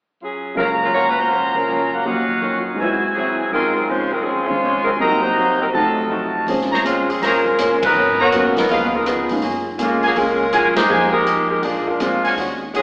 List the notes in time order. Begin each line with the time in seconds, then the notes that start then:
0.21 F#3 C#4 F4 G#4
0.55 F#2 C#3 F3 F#3 G#3 A#3 C#4 F4 A#4 F5 A#5
0.60 C#4
0.83 F#3 C#4 F4 A#4
0.93 F#2 F3 A#3 C#4 F4 F#4 C#5
1.09 B4
1.19 A#3 F4 F#4 C5
1.30 F#2 F3 A#3 C#4 F5 C6
1.54 C#3 F#3 C#4 F4 A#4
1.68 F#2 F3 A#3 C#4
1.92 C#3 A#3 F4 F#4
2.05 D#2 A#2 D#3 F3 F#3 C#4 F4 C#5 D#5 F5 F#5
2.41 D#3 F#3 C#4 F4 A#4 C#6
2.55 C6
2.60 F#4
2.68 A#5
2.74 G#2 G#3
2.78 G#2 F#3 C4 E4 F#4 B4 C5 E5 G#5
2.85 F#4
3.15 G#2 F#3 C4 E4 G#4
3.51 C#2 G#2 C#3 F3 F#3 G#3 C4 C#4 D#4 F4 A#4 G#5 C6
3.74 F#3 C4 D#4 A#4
3.89 C#3 F3 G#3 C4 C#4 F4 C5
4.11 F#3 C4 D#4 A#4
4.22 F3 C4 C#4 G#4
4.26 C#3 F3 G#3 C4
4.45 G#3 F4 C5 C#5
4.49 G#2 D#3 G#3 C#4
4.63 C#3 F3 G#3 C4
4.83 F#3 C4 D#4 A#4
4.96 C2 C3 F#3 C4 D#4 A#4
5.01 F#3 A#3 D#4 F#4 C5 D#5 A#5
5.07 D#4
5.21 A#3 D#4 F#4 C5
5.36 C3 F#3 A#3 D#4
5.60 F#3 C4 D#4 A#4
5.73 F2 C3 F3 F#3 A3 C4 D#4 F#4 A4 D#5 F5 A5
6.09 F3 A3 D#4 F#4
6.47 A#1 F3 G#3 A#3 C4 C#4 G#4 C5, open hi-hat
6.61 snare
6.72 G#4 C5 C#5 A#5, snare
6.84 G#3 A#3 C4 C#4 F4 G#4 C5, closed hi-hat
7.10 F3 C4 C#4 G#4, open hi-hat
7.21 F1 G#3 A#3 C#4 F4 G#4 A#4 C5 C#5 A#5, snare, open hi-hat
7.46 kick
7.59 A#3 C#4 G#4 C5, cross-stick, closed hi-hat
7.83 F#3 D#4 A#4 B4, muted upright bass stroke, kick, ride
7.95 G#1 G#2 F#3 B3 C#4
8.19 B3 F#4 A#4 B4 C#5 A#5
8.31 G#2 F#3 A#3 B3 C#4, closed hi-hat
8.35 C#4
8.57 C2 F#3 B3 D#4 A#4, snare, open hi-hat
8.69 C#2 C#3 F3 A#3 B3 D#4 F4 G#4 A#4 B4 D#5 F5, open hi-hat
8.93 G#3 D#4 F4 A#4
9.05 C#3 F3 B3 D#4 F4 G#4 A#4, cross-stick, closed hi-hat
9.29 C#3 G#3 A#3 C#4 D#4, open hi-hat
9.42 F#2 F#3 A#3 F4 G#4, open hi-hat
9.78 F#3 G#3 A#3 C#4 F4 G#4, closed hi-hat
10.03 F3 A#3 C#4 F#4 G#4 A#4 F5 G#5, open hi-hat
10.15 C#2 F#3 G#3 A#3 C#4 F4 G#4 A#4, open hi-hat
10.52 F#3 A#3 F4 F#4 G#4 A#4 F5 G#5, cross-stick, closed hi-hat
10.65 F2
10.75 F#2 G#3 D#4 G4 C5, snare, ride
10.89 F2 F3 G#3 A#3 D#4 G4 G#4 A#4 D#5 G#5
11.11 G#3 D#4 G4 A#4
11.25 F3 A#3 D#4 G#4, closed hi-hat
11.49 G#3 D#4 G4 A#4
11.62 A#1 A#2 F3 G#3 A#3 D4 G#4, open hi-hat
11.87 G#3 D4 F4 A#4
12.00 A#2 F3 G#3 A#3 C4 D4 F4, cross-stick, closed hi-hat
12.23 F#4 C#5 F5 G#5, muted upright bass stroke, open hi-hat
12.37 D#2 D#3 G#3 C#4 F#4, open hi-hat
12.74 D#3 F#3 G#3 C#4 F4 F#4 G#4, closed hi-hat